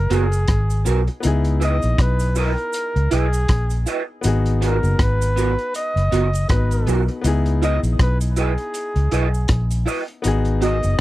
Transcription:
Already playing: F#1 B3 D#4 F#4 G#4 A#4
0.10 F#1 B3 F#4 A#4, closed hi-hat, cabasa
0.14 G#4
0.32 closed hi-hat, cabasa
0.48 G#1, kick, cross-stick, closed hi-hat
0.70 closed hi-hat, cabasa
0.85 B1 B3 F#4 A#4, closed hi-hat, cabasa
1.07 muted clean electric guitar stroke, closed hi-hat
1.20 B3 D#4, closed hi-hat, cabasa
1.24 C#2 E4 G#4
1.45 closed hi-hat
1.60 E4 B4 D#5, closed hi-hat, cabasa
1.82 A#1, closed hi-hat, cabasa
1.98 B1 B4, kick, cross-stick, closed hi-hat
2.19 closed hi-hat, cabasa
2.36 E4 A#4 B4 D#5, open hi-hat, cabasa
2.58 closed hi-hat
2.73 closed hi-hat, cabasa
2.96 C#2, closed hi-hat
3.11 B1 E4 G#4 B4 D#5, closed hi-hat, cabasa
3.33 closed hi-hat, cabasa
3.48 A#1, kick, cross-stick, closed hi-hat
3.70 closed hi-hat, cabasa
3.86 E4 B4 D#5, closed hi-hat, cabasa
4.21 G#1 B3 D#4 F#4, closed hi-hat, cabasa
4.27 G#4
4.46 closed hi-hat
4.61 B3 F#4 A#4, closed hi-hat, cabasa
4.83 F#1, closed hi-hat, cabasa
4.99 G#1 B4, kick, cross-stick, closed hi-hat
5.21 closed hi-hat, cabasa
5.36 B3 F#4 A#4, closed hi-hat, cabasa
5.59 closed hi-hat
5.74 D#5, closed hi-hat, cabasa
5.96 F#1, closed hi-hat
6.11 F#1 B3 F#4 A#4, closed hi-hat, cabasa
6.33 closed hi-hat, cabasa
6.48 G#1 B3 D#4 F#4 B4, kick, cross-stick, closed hi-hat
6.71 closed hi-hat, cabasa
6.86 B1 B3 F#4 A#4, closed hi-hat, cabasa
7.08 muted clean electric guitar stroke, closed hi-hat
7.21 C#2 B3 D#4, closed hi-hat, cabasa
7.25 E4 G#4
7.46 closed hi-hat
7.62 E4 B4 D#5, closed hi-hat, cabasa
7.83 A#1, closed hi-hat, cabasa
7.99 B1 B4, kick, cross-stick, closed hi-hat
8.21 closed hi-hat, cabasa
8.36 E4 G#4 B4 D#5, closed hi-hat, cabasa
8.58 closed hi-hat
8.74 closed hi-hat, cabasa
8.96 C#2, closed hi-hat
9.11 B1 E4 B4 D#5, closed hi-hat, cabasa
9.34 cabasa
9.48 A#1, kick, cross-stick, closed hi-hat
9.71 closed hi-hat, cabasa
9.86 E4 B4 D#5, open hi-hat, cabasa
10.08 closed hi-hat
10.22 G#1 B3 D#4 F#4, closed hi-hat, cabasa
10.27 G#4
10.45 closed hi-hat
10.61 B3 F#4 A#4 D#5, closed hi-hat, cabasa
10.83 F#1, closed hi-hat, cabasa

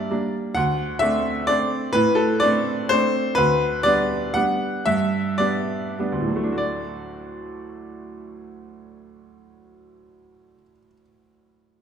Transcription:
Already playing: G2 G3 A#3 D4 D5 E5
0.10 G3 A#3 D4
0.55 D2 F#5
0.99 A3 C4 D4 E5
1.47 A3 C4 D4 D5
1.93 A2 B4
2.15 A4
2.40 A3 C4 D4 D5
2.89 A3 C4 D4 C5
3.35 D2 B4
3.83 G3 B3 D4 D5
4.34 G3 B3 D4 F#5
4.86 G2 E5
5.38 G3 B3 D4 D5
5.99 G3 B3 D4
6.12 D2
6.20 A2
6.28 F#3
6.36 A3
6.43 D4
6.52 F#4
6.58 D5

